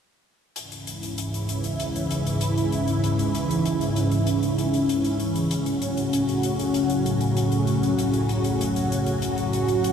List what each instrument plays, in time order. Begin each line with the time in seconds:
0.56 analog synth pad G#2 C#3 E3 C#4 E4, closed hi-hat
0.72 closed hi-hat
0.87 closed hi-hat
1.03 closed hi-hat
1.18 closed hi-hat
1.34 closed hi-hat
1.49 closed hi-hat
1.64 closed hi-hat
1.80 closed hi-hat
1.96 closed hi-hat
2.11 closed hi-hat
2.27 closed hi-hat
2.41 closed hi-hat
2.58 closed hi-hat
2.72 closed hi-hat
2.88 closed hi-hat
3.04 closed hi-hat
3.19 closed hi-hat
3.35 closed hi-hat
3.51 closed hi-hat
3.65 closed hi-hat
3.81 closed hi-hat
3.96 closed hi-hat
4.11 closed hi-hat
4.27 closed hi-hat
4.43 closed hi-hat
4.58 closed hi-hat
4.74 closed hi-hat
4.89 closed hi-hat
5.04 closed hi-hat
5.20 closed hi-hat
5.36 closed hi-hat
5.51 analog synth pad A2 C#3 F#3 F#4, closed hi-hat
5.66 closed hi-hat
5.82 closed hi-hat
5.97 closed hi-hat
6.13 closed hi-hat
6.29 closed hi-hat
6.43 closed hi-hat
6.59 closed hi-hat
6.74 closed hi-hat
6.90 closed hi-hat
7.06 closed hi-hat
7.21 closed hi-hat
7.37 closed hi-hat
7.52 closed hi-hat
7.67 closed hi-hat
7.83 closed hi-hat
7.99 closed hi-hat
8.14 closed hi-hat
8.29 closed hi-hat
8.44 closed hi-hat
8.61 closed hi-hat
8.76 closed hi-hat
8.92 closed hi-hat
9.06 closed hi-hat
9.22 closed hi-hat
9.38 closed hi-hat
9.53 closed hi-hat
9.68 closed hi-hat
9.84 closed hi-hat